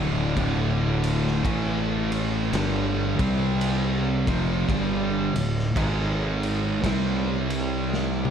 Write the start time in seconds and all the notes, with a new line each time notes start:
Already playing: D1 D2 A2 D3
0.35 D1 D2 A2 D3, kick, ride
1.04 ride
1.27 snare
1.43 A1 A2 E3 A3, kick, ride
2.12 ride
2.52 G1 G2 D3 G3, snare, ride
3.18 C2 C3 G3 C4, kick, ride
3.61 ride
4.26 F1 F2 C3 F3, kick, ride
4.68 G1 G2 D3 G3, kick, ride
5.34 D1 D2 A2, ride
5.58 snare
5.76 G#1 G#2 D#3 G#3, kick, ride
6.43 ride
6.83 C2 C3 G3 C4, kick, snare, ride
7.50 ride
7.94 snare
8.25 high tom